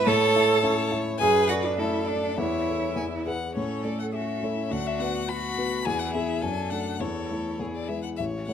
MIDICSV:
0, 0, Header, 1, 5, 480
1, 0, Start_track
1, 0, Key_signature, 3, "major"
1, 0, Tempo, 579710
1, 58, Time_signature, 2, 2, 24, 8
1, 7065, End_track
2, 0, Start_track
2, 0, Title_t, "Violin"
2, 0, Program_c, 0, 40
2, 47, Note_on_c, 0, 81, 106
2, 744, Note_off_c, 0, 81, 0
2, 980, Note_on_c, 0, 80, 105
2, 1211, Note_off_c, 0, 80, 0
2, 1228, Note_on_c, 0, 78, 70
2, 1278, Note_off_c, 0, 78, 0
2, 1343, Note_on_c, 0, 74, 61
2, 1394, Note_off_c, 0, 74, 0
2, 1462, Note_on_c, 0, 76, 68
2, 1699, Note_on_c, 0, 74, 64
2, 1712, Note_off_c, 0, 76, 0
2, 1955, Note_on_c, 0, 76, 69
2, 1967, Note_off_c, 0, 74, 0
2, 2702, Note_off_c, 0, 76, 0
2, 2937, Note_on_c, 0, 73, 59
2, 3177, Note_on_c, 0, 74, 55
2, 3190, Note_off_c, 0, 73, 0
2, 3303, Note_off_c, 0, 74, 0
2, 3308, Note_on_c, 0, 78, 57
2, 3357, Note_off_c, 0, 78, 0
2, 3423, Note_on_c, 0, 76, 59
2, 3908, Note_on_c, 0, 78, 72
2, 3920, Note_off_c, 0, 76, 0
2, 4030, Note_on_c, 0, 76, 64
2, 4042, Note_off_c, 0, 78, 0
2, 4140, Note_on_c, 0, 78, 72
2, 4153, Note_off_c, 0, 76, 0
2, 4379, Note_on_c, 0, 83, 84
2, 4391, Note_off_c, 0, 78, 0
2, 4845, Note_on_c, 0, 80, 88
2, 4858, Note_off_c, 0, 83, 0
2, 4961, Note_on_c, 0, 78, 71
2, 4974, Note_off_c, 0, 80, 0
2, 5074, Note_off_c, 0, 78, 0
2, 5079, Note_on_c, 0, 76, 69
2, 5314, Note_on_c, 0, 80, 65
2, 5326, Note_off_c, 0, 76, 0
2, 5548, Note_on_c, 0, 78, 59
2, 5560, Note_off_c, 0, 80, 0
2, 5796, Note_on_c, 0, 73, 61
2, 5809, Note_off_c, 0, 78, 0
2, 6289, Note_off_c, 0, 73, 0
2, 6413, Note_on_c, 0, 74, 48
2, 6524, Note_on_c, 0, 76, 56
2, 6536, Note_off_c, 0, 74, 0
2, 6640, Note_off_c, 0, 76, 0
2, 6645, Note_on_c, 0, 78, 51
2, 6695, Note_off_c, 0, 78, 0
2, 6762, Note_on_c, 0, 76, 71
2, 6828, Note_off_c, 0, 76, 0
2, 7009, Note_on_c, 0, 78, 63
2, 7065, Note_off_c, 0, 78, 0
2, 7065, End_track
3, 0, Start_track
3, 0, Title_t, "Violin"
3, 0, Program_c, 1, 40
3, 51, Note_on_c, 1, 73, 87
3, 514, Note_off_c, 1, 73, 0
3, 518, Note_on_c, 1, 73, 84
3, 987, Note_off_c, 1, 73, 0
3, 998, Note_on_c, 1, 71, 88
3, 1467, Note_off_c, 1, 71, 0
3, 1480, Note_on_c, 1, 69, 64
3, 1970, Note_on_c, 1, 73, 69
3, 1983, Note_off_c, 1, 69, 0
3, 2413, Note_off_c, 1, 73, 0
3, 2455, Note_on_c, 1, 80, 63
3, 2521, Note_off_c, 1, 80, 0
3, 2702, Note_on_c, 1, 78, 68
3, 2941, Note_off_c, 1, 78, 0
3, 2946, Note_on_c, 1, 61, 47
3, 3398, Note_off_c, 1, 61, 0
3, 3436, Note_on_c, 1, 61, 45
3, 3906, Note_on_c, 1, 66, 55
3, 3918, Note_off_c, 1, 61, 0
3, 4377, Note_off_c, 1, 66, 0
3, 4382, Note_on_c, 1, 66, 62
3, 4838, Note_off_c, 1, 66, 0
3, 4843, Note_on_c, 1, 68, 64
3, 5315, Note_on_c, 1, 69, 53
3, 5327, Note_off_c, 1, 68, 0
3, 5798, Note_off_c, 1, 69, 0
3, 5804, Note_on_c, 1, 69, 50
3, 6294, Note_on_c, 1, 68, 40
3, 6307, Note_off_c, 1, 69, 0
3, 6612, Note_off_c, 1, 68, 0
3, 6786, Note_on_c, 1, 73, 45
3, 7065, Note_off_c, 1, 73, 0
3, 7065, End_track
4, 0, Start_track
4, 0, Title_t, "Cello"
4, 0, Program_c, 2, 42
4, 58, Note_on_c, 2, 69, 107
4, 763, Note_off_c, 2, 69, 0
4, 997, Note_on_c, 2, 68, 101
4, 1234, Note_on_c, 2, 66, 81
4, 1246, Note_off_c, 2, 68, 0
4, 1370, Note_on_c, 2, 62, 79
4, 1382, Note_off_c, 2, 66, 0
4, 1480, Note_on_c, 2, 64, 75
4, 1492, Note_off_c, 2, 62, 0
4, 1714, Note_on_c, 2, 62, 76
4, 1727, Note_off_c, 2, 64, 0
4, 1961, Note_off_c, 2, 62, 0
4, 1966, Note_on_c, 2, 64, 75
4, 2692, Note_off_c, 2, 64, 0
4, 2961, Note_on_c, 2, 69, 49
4, 3440, Note_on_c, 2, 66, 46
4, 3453, Note_off_c, 2, 69, 0
4, 3673, Note_on_c, 2, 64, 47
4, 3686, Note_off_c, 2, 66, 0
4, 3900, Note_on_c, 2, 62, 61
4, 3913, Note_off_c, 2, 64, 0
4, 4361, Note_off_c, 2, 62, 0
4, 4366, Note_on_c, 2, 66, 52
4, 4840, Note_on_c, 2, 64, 59
4, 4852, Note_off_c, 2, 66, 0
4, 5306, Note_off_c, 2, 64, 0
4, 5311, Note_on_c, 2, 62, 46
4, 5786, Note_off_c, 2, 62, 0
4, 5798, Note_on_c, 2, 64, 45
4, 6520, Note_off_c, 2, 64, 0
4, 7065, End_track
5, 0, Start_track
5, 0, Title_t, "Grand piano"
5, 0, Program_c, 3, 0
5, 0, Control_c, 3, 64, 127
5, 54, Note_on_c, 3, 45, 77
5, 73, Control_c, 3, 64, 0
5, 194, Control_c, 3, 64, 127
5, 282, Note_off_c, 3, 45, 0
5, 295, Note_on_c, 3, 64, 60
5, 297, Note_on_c, 3, 76, 67
5, 505, Note_off_c, 3, 64, 0
5, 506, Note_off_c, 3, 76, 0
5, 522, Note_on_c, 3, 61, 56
5, 526, Note_on_c, 3, 64, 50
5, 528, Note_on_c, 3, 76, 64
5, 737, Note_off_c, 3, 61, 0
5, 739, Note_off_c, 3, 64, 0
5, 740, Note_off_c, 3, 76, 0
5, 757, Note_on_c, 3, 76, 61
5, 758, Note_on_c, 3, 64, 57
5, 974, Note_off_c, 3, 64, 0
5, 974, Note_off_c, 3, 76, 0
5, 1001, Note_on_c, 3, 42, 70
5, 1015, Control_c, 3, 64, 0
5, 1150, Control_c, 3, 64, 127
5, 1231, Note_off_c, 3, 42, 0
5, 1233, Note_on_c, 3, 69, 53
5, 1239, Note_on_c, 3, 74, 55
5, 1451, Note_off_c, 3, 69, 0
5, 1454, Note_off_c, 3, 74, 0
5, 1478, Note_on_c, 3, 57, 48
5, 1481, Note_on_c, 3, 69, 49
5, 1486, Note_on_c, 3, 74, 51
5, 1696, Note_off_c, 3, 57, 0
5, 1697, Note_off_c, 3, 69, 0
5, 1700, Note_off_c, 3, 74, 0
5, 1731, Note_on_c, 3, 69, 43
5, 1740, Note_on_c, 3, 74, 49
5, 1947, Note_off_c, 3, 69, 0
5, 1953, Note_off_c, 3, 74, 0
5, 1970, Note_on_c, 3, 40, 65
5, 1984, Control_c, 3, 64, 0
5, 2120, Control_c, 3, 64, 127
5, 2208, Note_off_c, 3, 40, 0
5, 2220, Note_on_c, 3, 69, 43
5, 2222, Note_on_c, 3, 73, 51
5, 2439, Note_off_c, 3, 69, 0
5, 2440, Note_off_c, 3, 73, 0
5, 2449, Note_on_c, 3, 40, 56
5, 2476, Control_c, 3, 64, 0
5, 2593, Control_c, 3, 64, 127
5, 2694, Note_off_c, 3, 40, 0
5, 2701, Note_on_c, 3, 68, 41
5, 2703, Note_on_c, 3, 71, 41
5, 2926, Note_off_c, 3, 68, 0
5, 2927, Note_off_c, 3, 71, 0
5, 2951, Note_on_c, 3, 45, 46
5, 2971, Control_c, 3, 64, 0
5, 3134, Control_c, 3, 64, 127
5, 3186, Note_on_c, 3, 57, 33
5, 3187, Note_off_c, 3, 45, 0
5, 3188, Note_on_c, 3, 69, 33
5, 3190, Note_on_c, 3, 73, 40
5, 3635, Note_off_c, 3, 57, 0
5, 3636, Note_off_c, 3, 69, 0
5, 3637, Note_off_c, 3, 73, 0
5, 3667, Note_on_c, 3, 57, 34
5, 3670, Note_on_c, 3, 69, 39
5, 3672, Note_on_c, 3, 73, 40
5, 3883, Note_off_c, 3, 57, 0
5, 3884, Note_off_c, 3, 69, 0
5, 3885, Note_off_c, 3, 73, 0
5, 3900, Note_on_c, 3, 38, 52
5, 3923, Control_c, 3, 64, 0
5, 4081, Control_c, 3, 64, 127
5, 4133, Note_off_c, 3, 38, 0
5, 4136, Note_on_c, 3, 59, 41
5, 4145, Note_on_c, 3, 66, 43
5, 4147, Note_on_c, 3, 71, 43
5, 4575, Note_off_c, 3, 59, 0
5, 4579, Note_off_c, 3, 66, 0
5, 4580, Note_off_c, 3, 71, 0
5, 4615, Note_on_c, 3, 59, 40
5, 4621, Note_on_c, 3, 66, 42
5, 4621, Note_on_c, 3, 71, 49
5, 4824, Note_off_c, 3, 59, 0
5, 4827, Note_off_c, 3, 66, 0
5, 4827, Note_off_c, 3, 71, 0
5, 4857, Note_on_c, 3, 40, 60
5, 4861, Control_c, 3, 64, 0
5, 4972, Control_c, 3, 64, 127
5, 5078, Note_off_c, 3, 40, 0
5, 5089, Note_on_c, 3, 59, 44
5, 5092, Note_on_c, 3, 64, 45
5, 5097, Note_on_c, 3, 68, 44
5, 5298, Note_off_c, 3, 59, 0
5, 5299, Note_off_c, 3, 64, 0
5, 5302, Note_off_c, 3, 68, 0
5, 5321, Note_on_c, 3, 42, 45
5, 5333, Control_c, 3, 64, 0
5, 5478, Control_c, 3, 64, 127
5, 5551, Note_off_c, 3, 42, 0
5, 5559, Note_on_c, 3, 57, 33
5, 5566, Note_on_c, 3, 62, 32
5, 5571, Note_on_c, 3, 69, 33
5, 5776, Note_off_c, 3, 57, 0
5, 5780, Note_off_c, 3, 62, 0
5, 5783, Note_off_c, 3, 69, 0
5, 5793, Note_on_c, 3, 40, 45
5, 5813, Control_c, 3, 64, 0
5, 5962, Control_c, 3, 64, 127
5, 6034, Note_off_c, 3, 40, 0
5, 6049, Note_on_c, 3, 57, 33
5, 6054, Note_on_c, 3, 64, 33
5, 6059, Note_on_c, 3, 69, 37
5, 6268, Note_off_c, 3, 57, 0
5, 6271, Note_off_c, 3, 64, 0
5, 6273, Note_off_c, 3, 69, 0
5, 6288, Note_on_c, 3, 40, 41
5, 6305, Control_c, 3, 64, 0
5, 6456, Control_c, 3, 64, 127
5, 6526, Note_off_c, 3, 40, 0
5, 6531, Note_on_c, 3, 56, 33
5, 6536, Note_on_c, 3, 64, 33
5, 6539, Note_on_c, 3, 71, 33
5, 6751, Note_off_c, 3, 56, 0
5, 6754, Note_off_c, 3, 64, 0
5, 6755, Note_off_c, 3, 71, 0
5, 6786, Note_on_c, 3, 33, 49
5, 6794, Control_c, 3, 64, 0
5, 6913, Control_c, 3, 64, 127
5, 7014, Note_off_c, 3, 33, 0
5, 7024, Note_on_c, 3, 57, 38
5, 7030, Note_on_c, 3, 64, 36
5, 7032, Note_on_c, 3, 73, 43
5, 7065, Note_off_c, 3, 57, 0
5, 7065, Note_off_c, 3, 64, 0
5, 7065, Note_off_c, 3, 73, 0
5, 7065, End_track
0, 0, End_of_file